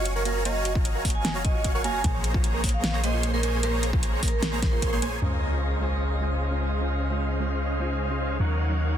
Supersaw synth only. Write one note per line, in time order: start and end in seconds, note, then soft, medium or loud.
0.00 0.13 F#4 medium
0.00 0.13 C#5 medium
0.00 0.13 F5 medium
0.00 0.13 G#5 medium
0.00 0.13 C#6 loud
0.16 0.23 F#4 medium
0.16 0.23 C#5 medium
0.16 0.23 F5 medium
0.16 0.23 G#5 medium
0.16 0.23 C#6 medium
0.25 0.43 F#4 medium
0.25 0.43 C#5 medium
0.25 0.43 F5 medium
0.25 0.43 G#5 medium
0.25 0.43 A#5 medium
0.45 0.73 F#4 loud
0.45 0.73 C#5 medium
0.45 0.73 F5 medium
0.45 0.73 G#5 medium
0.45 0.73 A#5 loud
0.75 1.03 F#4 loud
0.75 1.03 C#5 medium
0.75 1.03 F5 medium
0.75 1.03 G#5 medium
0.75 1.03 A#5 loud
1.05 1.42 F#4 loud
1.05 1.42 C#5 medium
1.05 1.42 F5 medium
1.05 1.42 G#5 medium
1.05 1.42 A#5 loud
1.45 1.72 F#4 medium
1.45 1.72 C#5 medium
1.45 1.72 F5 medium
1.45 1.72 G#5 medium
1.45 1.72 C#6 medium
1.75 1.82 F#4 medium
1.75 1.82 C#5 medium
1.75 1.82 F5 medium
1.75 1.82 G#5 medium
1.75 1.82 C#6 loud
1.84 2.02 F#4 medium
1.84 2.02 C#5 medium
1.84 2.02 F5 medium
1.84 2.02 G#5 medium
1.84 2.02 A#5 medium
2.04 2.32 A#3 medium
2.04 2.32 G#4 medium
2.04 2.32 C5 medium
2.04 2.32 C#5 medium
2.04 2.32 A#5 loud
2.34 2.61 A#3 loud
2.34 2.62 G#4 medium
2.34 2.61 C5 medium
2.34 2.62 C#5 medium
2.34 2.61 A#5 loud
2.64 3.01 A#3 loud
2.64 3.01 G#4 medium
2.64 3.01 C5 medium
2.64 3.01 C#5 medium
2.64 3.01 A#5 loud
3.04 3.31 A#3 medium
3.04 3.31 G#4 medium
3.04 3.31 C5 medium
3.04 3.31 C#5 medium
3.04 3.31 C6 loud
3.34 3.41 A#3 medium
3.34 3.41 G#4 medium
3.34 3.41 C5 medium
3.34 3.41 C#5 medium
3.34 3.41 C6 medium
3.43 3.61 A#3 medium
3.43 3.61 G#4 medium
3.43 3.61 C5 medium
3.43 3.61 C#5 medium
3.43 3.61 G#5 medium
3.63 3.91 A#3 loud
3.63 3.91 G#4 medium
3.63 3.91 C5 medium
3.63 3.91 C#5 medium
3.63 3.91 A#5 loud
3.93 4.20 A#3 loud
3.93 4.20 G#4 medium
3.93 4.20 C5 medium
3.93 4.20 C#5 medium
3.93 4.20 A#5 loud
4.23 4.60 A#3 loud
4.23 4.60 G#4 medium
4.23 4.60 C5 medium
4.23 4.60 C#5 medium
4.23 4.60 A#5 loud
4.63 4.90 A#3 medium
4.63 4.90 G#4 medium
4.63 4.90 C5 medium
4.63 4.90 C#5 medium
4.63 4.90 C6 medium
4.93 5.00 A#3 medium
4.93 5.00 G#4 medium
4.93 5.00 C5 medium
4.93 5.00 C#5 medium
4.93 5.00 C6 medium
5.02 5.20 A#3 medium
5.02 5.20 G#4 medium
5.02 5.20 C5 medium
5.02 5.20 C#5 medium
5.02 5.20 G#5 medium
5.22 8.38 C#4 medium
5.22 8.38 G#4 medium
5.22 8.38 C5 medium
5.22 8.38 D#5 medium
5.22 8.38 F5 medium
8.40 8.98 D#4 medium
8.40 8.98 A#4 medium
8.40 8.98 C#5 medium
8.40 8.98 F5 medium
8.40 8.98 F#5 medium